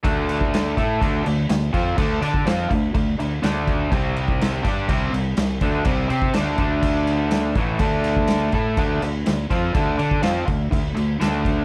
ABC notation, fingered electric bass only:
X:1
M:4/4
L:1/8
Q:1/4=124
K:Clyd
V:1 name="Fingered electric bass" clef=bass
D,,3 A,, D,, D,, D,, =F,, | D,, D, =F,, D,, D,, D,, D,,2 | C,,3 G,, C,, C,, C,, D,, | C,, C, D,, D,,4 A,,, |
D,,3 A,, D,, D,, D,, =F,, | D,, D, =F,, D,, D,, D,, D,,2 |]